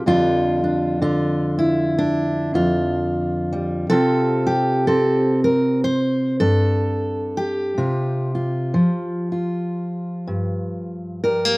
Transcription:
0, 0, Header, 1, 2, 480
1, 0, Start_track
1, 0, Tempo, 965562
1, 22, Time_signature, 4, 2, 24, 8
1, 5755, End_track
2, 0, Start_track
2, 0, Title_t, "Steel-string acoustic guitar"
2, 0, Program_c, 0, 25
2, 31, Note_on_c, 0, 41, 65
2, 33, Note_on_c, 0, 50, 42
2, 35, Note_on_c, 0, 55, 42
2, 38, Note_on_c, 0, 65, 94
2, 39, Note_on_c, 0, 62, 47
2, 311, Note_off_c, 0, 62, 0
2, 317, Note_on_c, 0, 62, 50
2, 499, Note_off_c, 0, 50, 0
2, 503, Note_off_c, 0, 65, 0
2, 505, Note_on_c, 0, 50, 66
2, 509, Note_on_c, 0, 65, 85
2, 787, Note_off_c, 0, 62, 0
2, 789, Note_on_c, 0, 64, 80
2, 984, Note_off_c, 0, 65, 0
2, 986, Note_on_c, 0, 62, 83
2, 1257, Note_off_c, 0, 41, 0
2, 1263, Note_on_c, 0, 41, 67
2, 1266, Note_off_c, 0, 62, 0
2, 1268, Note_on_c, 0, 65, 78
2, 1465, Note_off_c, 0, 64, 0
2, 1747, Note_off_c, 0, 55, 0
2, 1753, Note_on_c, 0, 55, 50
2, 1918, Note_off_c, 0, 41, 0
2, 1935, Note_off_c, 0, 65, 0
2, 1937, Note_on_c, 0, 69, 108
2, 1940, Note_off_c, 0, 50, 0
2, 1940, Note_on_c, 0, 48, 65
2, 1942, Note_on_c, 0, 60, 43
2, 1946, Note_off_c, 0, 55, 0
2, 1948, Note_on_c, 0, 65, 50
2, 1950, Note_on_c, 0, 67, 48
2, 2218, Note_off_c, 0, 67, 0
2, 2220, Note_on_c, 0, 67, 84
2, 2416, Note_off_c, 0, 69, 0
2, 2422, Note_on_c, 0, 69, 93
2, 2424, Note_off_c, 0, 60, 0
2, 2426, Note_on_c, 0, 60, 68
2, 2703, Note_off_c, 0, 69, 0
2, 2705, Note_on_c, 0, 70, 88
2, 2900, Note_off_c, 0, 67, 0
2, 2901, Note_off_c, 0, 70, 0
2, 2903, Note_on_c, 0, 72, 105
2, 3179, Note_off_c, 0, 72, 0
2, 3181, Note_on_c, 0, 69, 100
2, 3182, Note_off_c, 0, 48, 0
2, 3184, Note_on_c, 0, 43, 66
2, 3665, Note_on_c, 0, 67, 80
2, 3839, Note_off_c, 0, 60, 0
2, 3840, Note_off_c, 0, 65, 0
2, 3861, Note_off_c, 0, 69, 0
2, 3862, Note_off_c, 0, 43, 0
2, 3866, Note_on_c, 0, 48, 69
2, 3868, Note_on_c, 0, 65, 47
2, 4144, Note_off_c, 0, 65, 0
2, 4150, Note_on_c, 0, 65, 47
2, 4343, Note_off_c, 0, 48, 0
2, 4344, Note_on_c, 0, 53, 70
2, 4626, Note_off_c, 0, 65, 0
2, 4633, Note_on_c, 0, 65, 40
2, 5108, Note_on_c, 0, 43, 63
2, 5584, Note_off_c, 0, 65, 0
2, 5586, Note_on_c, 0, 70, 80
2, 5590, Note_on_c, 0, 55, 49
2, 5691, Note_off_c, 0, 55, 0
2, 5691, Note_on_c, 0, 58, 38
2, 5755, Note_off_c, 0, 43, 0
2, 5755, Note_off_c, 0, 53, 0
2, 5755, Note_off_c, 0, 58, 0
2, 5755, Note_off_c, 0, 67, 0
2, 5755, Note_off_c, 0, 70, 0
2, 5755, End_track
0, 0, End_of_file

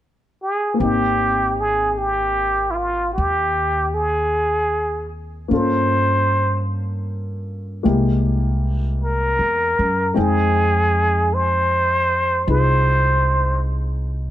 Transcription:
0, 0, Header, 1, 4, 480
1, 0, Start_track
1, 0, Key_signature, -4, "major"
1, 0, Tempo, 1176471
1, 326, Time_signature, 4, 2, 24, 8
1, 2724, Tempo, 1160542
1, 5880, End_track
2, 0, Start_track
2, 0, Title_t, "Muted trumpet"
2, 0, Program_c, 0, 59
2, 174, Note_on_c, 0, 68, 62
2, 317, Note_off_c, 0, 68, 0
2, 327, Note_on_c, 0, 67, 73
2, 653, Note_on_c, 0, 68, 69
2, 660, Note_off_c, 0, 67, 0
2, 807, Note_on_c, 0, 67, 67
2, 813, Note_off_c, 0, 68, 0
2, 1105, Note_on_c, 0, 64, 48
2, 1111, Note_off_c, 0, 67, 0
2, 1121, Note_on_c, 0, 65, 63
2, 1127, Note_off_c, 0, 64, 0
2, 1275, Note_off_c, 0, 65, 0
2, 1278, Note_on_c, 0, 67, 70
2, 1608, Note_on_c, 0, 68, 64
2, 1614, Note_off_c, 0, 67, 0
2, 2090, Note_off_c, 0, 68, 0
2, 2260, Note_on_c, 0, 72, 76
2, 2714, Note_off_c, 0, 72, 0
2, 3690, Note_on_c, 0, 70, 71
2, 4172, Note_on_c, 0, 68, 70
2, 4178, Note_off_c, 0, 70, 0
2, 4652, Note_on_c, 0, 72, 77
2, 4659, Note_off_c, 0, 68, 0
2, 5128, Note_off_c, 0, 72, 0
2, 5131, Note_on_c, 0, 72, 74
2, 5590, Note_off_c, 0, 72, 0
2, 5880, End_track
3, 0, Start_track
3, 0, Title_t, "Grand piano"
3, 0, Program_c, 1, 0
3, 302, Note_on_c, 1, 58, 43
3, 318, Note_on_c, 1, 60, 33
3, 333, Note_on_c, 1, 63, 35
3, 345, Note_on_c, 1, 79, 44
3, 413, Control_c, 1, 64, 127
3, 2231, Note_off_c, 1, 58, 0
3, 2237, Note_on_c, 1, 58, 44
3, 2243, Note_off_c, 1, 60, 0
3, 2243, Note_on_c, 1, 61, 39
3, 2251, Note_off_c, 1, 63, 0
3, 2252, Control_c, 1, 64, 0
3, 2254, Note_on_c, 1, 65, 43
3, 2257, Note_off_c, 1, 79, 0
3, 2258, Note_on_c, 1, 69, 51
3, 2315, Control_c, 1, 64, 127
3, 3197, Note_off_c, 1, 58, 0
3, 3202, Note_on_c, 1, 56, 47
3, 3203, Note_on_c, 1, 58, 43
3, 3205, Note_off_c, 1, 61, 0
3, 3209, Note_on_c, 1, 64, 43
3, 3210, Note_on_c, 1, 67, 50
3, 3211, Note_off_c, 1, 65, 0
3, 3211, Control_c, 1, 64, 0
3, 3212, Note_off_c, 1, 69, 0
3, 3296, Control_c, 1, 64, 127
3, 4151, Note_off_c, 1, 56, 0
3, 4157, Note_on_c, 1, 56, 46
3, 4158, Note_on_c, 1, 60, 44
3, 4161, Note_off_c, 1, 58, 0
3, 4163, Note_on_c, 1, 63, 42
3, 4163, Note_on_c, 1, 79, 52
3, 4164, Note_off_c, 1, 64, 0
3, 4165, Note_off_c, 1, 67, 0
3, 4169, Control_c, 1, 64, 0
3, 4242, Control_c, 1, 64, 127
3, 5115, Note_off_c, 1, 63, 0
3, 5121, Note_on_c, 1, 63, 35
3, 5130, Note_on_c, 1, 65, 31
3, 5135, Note_on_c, 1, 68, 36
3, 5880, Note_off_c, 1, 56, 0
3, 5880, Note_off_c, 1, 60, 0
3, 5880, Note_off_c, 1, 63, 0
3, 5880, Note_off_c, 1, 65, 0
3, 5880, Note_off_c, 1, 68, 0
3, 5880, Note_off_c, 1, 79, 0
3, 5880, End_track
4, 0, Start_track
4, 0, Title_t, "Upright bass"
4, 0, Program_c, 2, 32
4, 327, Note_on_c, 2, 32, 65
4, 1275, Note_off_c, 2, 32, 0
4, 1296, Note_on_c, 2, 39, 67
4, 2234, Note_off_c, 2, 39, 0
4, 2248, Note_on_c, 2, 43, 59
4, 3191, Note_off_c, 2, 43, 0
4, 3212, Note_on_c, 2, 36, 71
4, 3830, Note_off_c, 2, 36, 0
4, 3846, Note_on_c, 2, 40, 47
4, 3994, Note_off_c, 2, 40, 0
4, 4012, Note_on_c, 2, 42, 54
4, 4157, Note_off_c, 2, 42, 0
4, 4168, Note_on_c, 2, 41, 65
4, 5109, Note_off_c, 2, 41, 0
4, 5123, Note_on_c, 2, 36, 74
4, 5880, Note_off_c, 2, 36, 0
4, 5880, End_track
0, 0, End_of_file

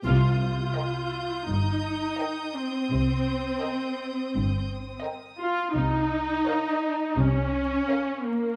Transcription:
0, 0, Header, 1, 7, 480
1, 0, Start_track
1, 0, Tempo, 714286
1, 33, Time_signature, 4, 2, 24, 8
1, 5753, End_track
2, 0, Start_track
2, 0, Title_t, "Violin section"
2, 0, Program_c, 0, 48
2, 43, Note_on_c, 0, 87, 29
2, 43, Note_on_c, 0, 91, 28
2, 3131, Note_off_c, 0, 91, 0
2, 3611, Note_off_c, 0, 87, 0
2, 5753, End_track
3, 0, Start_track
3, 0, Title_t, "Violin section"
3, 0, Program_c, 1, 48
3, 521, Note_on_c, 1, 79, 31
3, 874, Note_off_c, 1, 79, 0
3, 1484, Note_on_c, 1, 79, 37
3, 1836, Note_off_c, 1, 79, 0
3, 2437, Note_on_c, 1, 79, 34
3, 2792, Note_off_c, 1, 79, 0
3, 3395, Note_on_c, 1, 79, 36
3, 3751, Note_off_c, 1, 79, 0
3, 4352, Note_on_c, 1, 77, 37
3, 4710, Note_off_c, 1, 77, 0
3, 5310, Note_on_c, 1, 77, 41
3, 5669, Note_off_c, 1, 77, 0
3, 5753, End_track
4, 0, Start_track
4, 0, Title_t, "Violin section"
4, 0, Program_c, 2, 48
4, 516, Note_on_c, 2, 70, 30
4, 516, Note_on_c, 2, 75, 35
4, 872, Note_off_c, 2, 70, 0
4, 872, Note_off_c, 2, 75, 0
4, 1479, Note_on_c, 2, 70, 34
4, 1481, Note_on_c, 2, 75, 36
4, 1833, Note_off_c, 2, 70, 0
4, 1834, Note_off_c, 2, 75, 0
4, 2429, Note_on_c, 2, 75, 35
4, 2432, Note_on_c, 2, 70, 33
4, 2788, Note_off_c, 2, 75, 0
4, 2789, Note_off_c, 2, 70, 0
4, 3383, Note_on_c, 2, 75, 35
4, 3384, Note_on_c, 2, 70, 36
4, 3745, Note_off_c, 2, 75, 0
4, 3746, Note_off_c, 2, 70, 0
4, 4350, Note_on_c, 2, 70, 39
4, 4353, Note_on_c, 2, 73, 39
4, 4708, Note_off_c, 2, 70, 0
4, 4710, Note_off_c, 2, 73, 0
4, 5304, Note_on_c, 2, 70, 41
4, 5310, Note_on_c, 2, 73, 42
4, 5665, Note_off_c, 2, 70, 0
4, 5669, Note_off_c, 2, 73, 0
4, 5753, End_track
5, 0, Start_track
5, 0, Title_t, "Viola section"
5, 0, Program_c, 3, 48
5, 38, Note_on_c, 3, 65, 57
5, 968, Note_off_c, 3, 65, 0
5, 1000, Note_on_c, 3, 63, 47
5, 1716, Note_off_c, 3, 63, 0
5, 1724, Note_on_c, 3, 60, 47
5, 3398, Note_off_c, 3, 60, 0
5, 3627, Note_on_c, 3, 65, 55
5, 3853, Note_off_c, 3, 65, 0
5, 3878, Note_on_c, 3, 63, 57
5, 4833, Note_on_c, 3, 61, 60
5, 4835, Note_off_c, 3, 63, 0
5, 5551, Note_on_c, 3, 58, 54
5, 5553, Note_off_c, 3, 61, 0
5, 5753, Note_off_c, 3, 58, 0
5, 5753, End_track
6, 0, Start_track
6, 0, Title_t, "Cello section"
6, 0, Program_c, 4, 48
6, 29, Note_on_c, 4, 48, 53
6, 412, Note_off_c, 4, 48, 0
6, 989, Note_on_c, 4, 43, 37
6, 1372, Note_off_c, 4, 43, 0
6, 1950, Note_on_c, 4, 48, 41
6, 2333, Note_off_c, 4, 48, 0
6, 2917, Note_on_c, 4, 43, 43
6, 3296, Note_off_c, 4, 43, 0
6, 3870, Note_on_c, 4, 48, 45
6, 4252, Note_off_c, 4, 48, 0
6, 4827, Note_on_c, 4, 48, 47
6, 5211, Note_off_c, 4, 48, 0
6, 5753, End_track
7, 0, Start_track
7, 0, Title_t, "Double bass section"
7, 0, Program_c, 5, 48
7, 32, Note_on_c, 5, 36, 50
7, 414, Note_off_c, 5, 36, 0
7, 1001, Note_on_c, 5, 31, 37
7, 1378, Note_off_c, 5, 31, 0
7, 1962, Note_on_c, 5, 36, 38
7, 2339, Note_off_c, 5, 36, 0
7, 2917, Note_on_c, 5, 31, 44
7, 3296, Note_off_c, 5, 31, 0
7, 3872, Note_on_c, 5, 36, 43
7, 4253, Note_off_c, 5, 36, 0
7, 4827, Note_on_c, 5, 36, 47
7, 5211, Note_off_c, 5, 36, 0
7, 5753, End_track
0, 0, End_of_file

